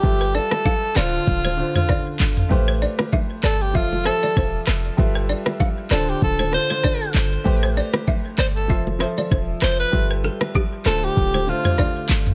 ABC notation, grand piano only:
X:1
M:4/4
L:1/8
Q:"Swing 16ths" 1/4=97
K:Ddor
V:1 name="Grand piano"
[G,FABe]3 [D,DFc]2 [D,DFc]2 z | [A,GBc]3 z [F,FAe] [F,FGAe]2 z | [G,FABe]3 [D,DFc]2 [D,DFc]2 z | [A,GBc]3 z [F,FAe] [F,FAe]2 z |
[G,FABe]3 [D,A,Fc]2 [D,A,Fc]2 z |]